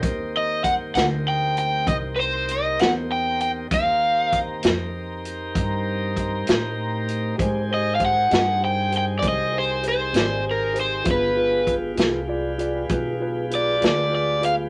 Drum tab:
HH |x-xx-xx-xx-x|x-xx-xx-xx-x|x-xx-xx-xx-x|x-xx-xx-xx-x|
SD |---o-----o--|---o-----o--|---o-----o--|---o-----o--|
BD |o-o---o-----|o-o---o-o---|o-o---o-----|o-o---o-----|